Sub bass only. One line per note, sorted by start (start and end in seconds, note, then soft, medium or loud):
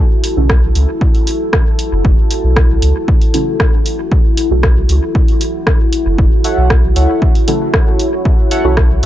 0.37 0.70 B1 medium
0.75 0.85 C#2 medium
1.92 2.02 F#1 medium
2.05 2.15 F#1 loud
2.44 2.77 B1 medium
2.82 2.92 C#2 medium
4.51 4.84 B1 medium
4.89 4.99 C#2 medium
6.06 6.15 F#1 medium
6.18 6.29 F#1 loud
6.58 6.91 B1 medium
6.96 7.06 C#2 medium
8.65 8.98 B1 medium